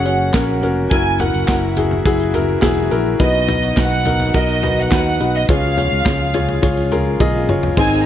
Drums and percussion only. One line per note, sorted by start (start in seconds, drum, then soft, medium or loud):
0.06 closed hi-hat medium
0.34 kick medium
0.34 snare loud
0.34 clap medium
0.34 closed hi-hat medium
0.63 closed hi-hat medium
0.91 kick loud
0.91 closed hi-hat medium
1.20 closed hi-hat medium
1.20 floor tom medium
1.34 closed hi-hat soft
1.48 kick loud
1.48 snare medium
1.48 clap medium
1.48 closed hi-hat medium
1.77 closed hi-hat medium
1.77 floor tom medium
1.91 floor tom medium
2.05 kick loud
2.05 closed hi-hat medium
2.20 closed hi-hat soft
2.34 closed hi-hat medium
2.34 floor tom medium
2.62 kick loud
2.62 snare loud
2.62 clap medium
2.62 closed hi-hat medium
2.91 closed hi-hat medium
3.20 kick loud
3.20 closed hi-hat medium
3.49 closed hi-hat medium
3.49 floor tom medium
3.63 closed hi-hat soft
3.77 kick loud
3.77 snare loud
3.77 clap medium
3.77 closed hi-hat medium
4.05 closed hi-hat medium
4.05 floor tom medium
4.20 floor tom medium
4.34 kick loud
4.34 closed hi-hat medium
4.49 closed hi-hat medium
4.63 closed hi-hat medium
4.63 floor tom medium
4.92 kick loud
4.92 snare loud
4.92 clap medium
4.92 closed hi-hat loud
5.20 closed hi-hat medium
5.49 kick loud
5.49 closed hi-hat medium
5.78 closed hi-hat medium
5.78 floor tom medium
6.06 kick loud
6.06 snare loud
6.06 clap medium
6.06 closed hi-hat medium
6.34 closed hi-hat medium
6.34 floor tom medium
6.49 floor tom medium
6.63 kick loud
6.63 closed hi-hat medium
6.77 closed hi-hat soft
6.92 closed hi-hat medium
6.92 floor tom medium
7.20 kick loud
7.20 high tom medium
7.49 mid tom medium
7.63 floor tom medium
7.77 kick loud
7.77 crash loud